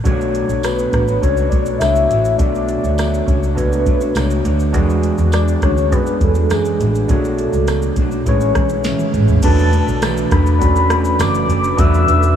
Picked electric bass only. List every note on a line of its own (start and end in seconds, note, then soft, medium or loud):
0.05 0.40 B1 medium
0.49 0.84 B1 medium
0.93 1.16 A1 medium
1.22 1.46 C#2 medium
1.51 1.75 B1 medium
1.81 2.04 C#2 medium
2.10 2.34 A1 medium
2.39 2.75 B1 loud
2.84 3.19 D2 medium
3.28 3.86 C#2 medium
3.86 4.10 B1 medium
4.16 4.39 C#2 medium
4.45 4.74 D2 medium
4.74 5.09 E2 loud
5.18 5.54 E2 medium
5.62 5.92 D2 medium
5.92 6.15 F#2 medium
6.21 6.44 E2 medium
6.50 6.74 F#2 medium
6.80 7.03 A1 medium
7.09 7.44 B1 medium
7.53 7.88 C#2 medium
7.97 8.20 B1 medium
8.26 8.50 A1 medium
8.55 8.91 B1 medium
9.15 9.38 A1 medium
9.43 9.79 E1 loud
9.87 10.23 B1 medium
10.31 11.15 E1 loud
11.20 11.43 F#1 medium
11.49 11.72 F#1 medium
11.78 12.02 E1 loud
12.08 12.36 E1 medium